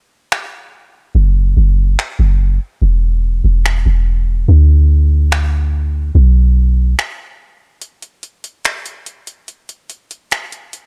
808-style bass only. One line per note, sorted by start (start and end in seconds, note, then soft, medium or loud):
1.15 1.55 F#1 loud
1.57 1.96 F#1 loud
2.19 2.59 F#1 loud
2.82 3.42 E1 loud
3.44 3.84 E1 loud
3.86 4.46 E1 loud
4.48 6.11 D2 loud
6.15 6.95 B1 loud